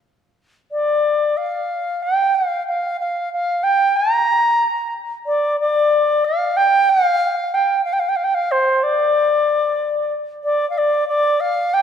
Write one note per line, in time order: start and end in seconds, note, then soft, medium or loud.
0.72 1.38 D5 medium
1.37 2.04 F5 medium
2.02 2.36 G5 medium
2.35 2.66 F5 medium
2.67 2.97 F5 medium
3.00 3.29 F5 medium
3.33 3.65 F5 medium
3.63 3.98 G5 medium
3.96 4.93 A#5 medium
5.26 5.56 D5 medium
5.60 6.26 D5 loud
6.24 6.58 F5 loud
6.56 6.91 G5 loud
6.90 7.55 F5 loud
7.54 7.83 G5 loud
7.84 7.94 F5 medium
7.93 8.01 G5 medium
7.99 8.10 F5 medium
8.09 8.17 G5 medium
8.16 8.25 F5 medium
8.24 8.36 G5 medium
8.34 8.53 F5 loud
8.51 8.84 C5 medium
8.83 10.12 D5 medium
10.44 10.68 D5 medium
10.70 10.79 F5 medium
10.78 11.07 D5 medium
11.08 11.42 D5 medium
11.40 11.75 F5 loud
11.73 11.82 G5 loud